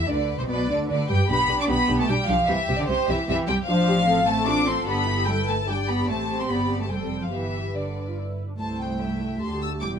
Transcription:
0.07 0.37 D2 medium
0.07 0.38 D3 medium
0.07 0.15 D4 medium
0.07 0.48 B4 medium
0.07 0.38 D5 medium
0.38 0.42 C2 medium
0.38 0.48 C3 medium
0.38 0.48 C4 medium
0.38 0.43 C5 medium
0.48 0.68 B1 medium
0.48 0.68 B2 medium
0.48 0.68 B3 medium
0.48 0.68 B4 medium
0.48 0.89 D5 medium
0.69 0.88 D2 medium
0.69 0.88 D3 medium
0.69 0.88 D4 medium
0.69 0.77 D5 medium
0.89 0.97 D2 medium
0.89 1.09 D3 medium
0.89 0.97 D4 medium
0.89 1.28 B4 medium
0.89 1.09 D5 medium
1.09 1.17 G2 medium
1.09 1.17 G3 medium
1.09 1.28 G4 medium
1.09 1.29 G5 medium
1.29 1.37 B1 medium
1.29 1.58 B3 medium
1.29 1.37 D4 medium
1.29 1.67 G4 medium
1.29 1.37 G4 medium
1.29 1.58 B5 loud
1.49 1.56 B1 medium
1.49 1.57 D4 medium
1.49 1.57 G4 medium
1.58 1.68 D4 medium
1.58 1.64 D6 medium
1.68 1.77 B1 medium
1.68 1.99 B3 medium
1.68 1.76 D4 medium
1.68 1.76 G4 medium
1.68 3.64 G4 medium
1.68 1.98 B5 loud
1.88 1.97 B1 medium
1.88 1.96 D4 medium
1.88 1.96 G4 medium
1.98 2.08 A3 medium
1.98 2.08 A5 medium
2.08 2.16 B1 medium
2.08 2.28 G3 medium
2.08 2.16 D4 medium
2.08 2.16 G4 medium
2.08 2.29 G5 medium
2.28 2.37 B1 medium
2.28 2.48 F3 medium
2.28 2.36 D4 medium
2.28 2.36 G4 medium
2.28 2.48 F5 medium
2.48 2.57 C2 medium
2.48 2.56 E3 medium
2.48 2.56 C4 medium
2.48 2.56 G4 medium
2.48 2.78 E5 loud
2.68 2.77 C2 medium
2.68 2.76 C4 medium
2.68 2.76 G4 medium
2.78 2.88 D3 medium
2.78 2.88 D5 medium
2.88 2.97 C2 medium
2.88 2.96 C3 medium
2.88 2.96 C4 medium
2.88 2.96 G4 medium
2.88 3.08 C5 loud
3.08 3.16 C2 medium
3.08 3.27 E3 medium
3.08 3.16 C4 medium
3.08 3.16 G4 medium
3.08 3.28 E5 medium
3.28 3.36 C2 medium
3.28 3.47 E3 medium
3.28 3.36 C4 medium
3.28 3.36 G4 medium
3.28 3.37 E5 loud
3.47 3.56 C2 medium
3.47 3.55 G3 medium
3.47 3.56 C4 medium
3.47 3.56 G4 medium
3.47 3.55 G5 medium
3.67 4.83 A1 medium
3.67 4.25 F3 medium
3.67 4.04 D4 medium
3.67 3.76 F4 medium
3.67 4.07 C5 medium
3.67 4.26 F5 loud
3.87 3.95 G4 medium
4.06 4.25 C4 medium
4.06 4.45 A4 medium
4.06 5.25 A4 medium
4.26 4.46 A3 medium
4.26 4.85 C4 medium
4.26 4.47 A5 medium
4.46 4.67 D4 loud
4.46 4.87 F4 medium
4.46 4.67 D6 loud
4.67 4.87 C4 medium
4.67 4.87 C6 medium
4.86 6.06 G1 medium
4.86 5.27 B3 medium
4.86 5.07 D4 medium
4.86 5.28 G4 medium
4.86 5.27 B5 loud
5.07 5.26 E4 medium
5.27 5.36 G3 medium
5.27 5.67 E4 medium
5.27 5.68 A4 medium
5.27 5.67 B4 medium
5.27 5.48 G5 medium
5.48 5.56 A3 medium
5.48 5.68 A5 medium
5.68 5.76 G3 medium
5.68 6.08 D4 medium
5.68 6.07 G4 medium
5.68 6.08 D5 medium
5.68 5.88 G5 medium
5.88 6.08 B3 medium
5.88 6.09 B5 medium
6.08 6.46 A1 soft
6.08 6.39 A3 medium
6.08 6.86 C4 medium
6.08 6.86 G4 medium
6.08 6.50 C5 medium
6.08 6.39 A5 medium
6.39 6.49 C4 medium
6.39 6.50 C6 medium
6.49 6.90 G1 soft
6.49 6.80 B3 medium
6.49 6.89 D5 medium
6.49 6.81 B5 medium
6.80 6.90 A3 soft
6.80 6.91 A5 medium
6.90 7.32 F1 soft
6.90 7.21 G3 medium
6.90 7.31 C4 soft
6.90 7.32 A4 soft
6.90 7.31 C5 soft
6.90 7.22 G5 medium
7.22 7.26 F3 soft
7.22 7.33 F5 soft
7.31 8.37 G1 soft
7.31 7.74 E3 soft
7.31 7.74 B3 soft
7.31 7.74 G4 soft
7.31 8.38 B4 soft
7.31 7.75 E5 medium
7.75 8.16 D3 soft
7.75 8.05 D4 soft
7.75 8.17 D5 soft
8.07 8.17 F4 soft
8.17 8.49 E4 soft
8.49 8.59 D4 soft
8.58 9.37 C2 soft
8.58 9.77 A3 soft
8.58 9.37 E4 soft
8.58 8.98 C5 soft
8.58 8.78 A5 medium
8.80 9.41 G5 medium
9.01 9.41 E5 soft
9.41 9.81 D2 soft
9.41 9.80 G4 soft
9.41 9.82 A5 medium
9.41 9.61 C6 medium
9.62 9.70 E6 medium
9.81 9.99 E1 soft
9.81 9.99 E2 soft
9.81 9.99 G3 soft
9.81 9.99 G4 soft
9.81 9.99 G5 soft
9.81 9.90 D6 medium

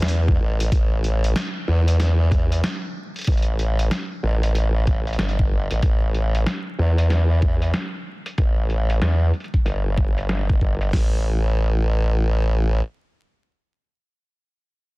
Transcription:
0.00 0.38 E2 medium
0.00 snare loud
0.08 closed hi-hat medium
0.28 kick loud
0.40 0.70 A1 medium
0.60 closed hi-hat medium
0.72 1.34 A1 medium
0.72 kick loud
0.72 closed hi-hat medium
1.04 closed hi-hat soft
1.24 closed hi-hat soft
1.36 snare loud
1.36 closed hi-hat medium
1.68 2.62 E2 medium
1.88 closed hi-hat soft
2.00 snare medium
2.00 closed hi-hat medium
2.32 kick loud
2.32 closed hi-hat soft
2.52 closed hi-hat soft
2.64 snare loud
2.64 closed hi-hat medium
3.16 closed hi-hat soft
3.19 closed hi-hat soft
3.21 closed hi-hat soft
3.24 closed hi-hat soft
3.27 3.89 A1 loud
3.27 kick loud
3.27 closed hi-hat medium
3.32 closed hi-hat soft
3.37 closed hi-hat soft
3.42 closed hi-hat soft
3.59 closed hi-hat soft
3.79 closed hi-hat soft
3.91 snare loud
3.91 closed hi-hat medium
4.23 5.17 A1 medium
4.43 closed hi-hat soft
4.55 closed hi-hat medium
4.87 kick loud
4.87 closed hi-hat soft
5.07 closed hi-hat soft
5.13 closed hi-hat soft
5.19 5.68 G1 medium
5.19 snare loud
5.19 closed hi-hat medium
5.29 closed hi-hat soft
5.39 kick loud
5.71 5.81 A1 medium
5.71 closed hi-hat soft
5.83 6.45 A1 medium
5.83 kick loud
5.83 closed hi-hat medium
6.14 closed hi-hat soft
6.35 closed hi-hat soft
6.46 snare loud
6.46 closed hi-hat medium
6.79 7.72 E2 medium
6.98 closed hi-hat soft
7.10 snare medium
7.10 closed hi-hat medium
7.42 kick medium
7.42 closed hi-hat soft
7.62 closed hi-hat soft
7.74 snare loud
7.74 closed hi-hat medium
8.26 closed hi-hat soft
8.38 9.00 A1 medium
8.38 kick loud
8.38 closed hi-hat medium
8.70 closed hi-hat soft
8.90 closed hi-hat medium
9.02 9.32 E2 medium
9.02 snare loud
9.02 closed hi-hat medium
9.34 closed hi-hat soft
9.40 closed hi-hat soft
9.44 closed hi-hat soft
9.54 kick medium
9.54 closed hi-hat soft
9.65 10.59 G1 medium
9.65 closed hi-hat medium
9.97 kick medium
9.97 closed hi-hat soft
10.18 closed hi-hat soft
10.29 snare loud
10.29 closed hi-hat medium
10.49 kick medium
10.61 10.91 G1 medium
10.61 kick medium
10.81 closed hi-hat soft
10.93 12.81 A1 loud
10.93 kick medium
10.93 snare loud
10.93 open hi-hat medium

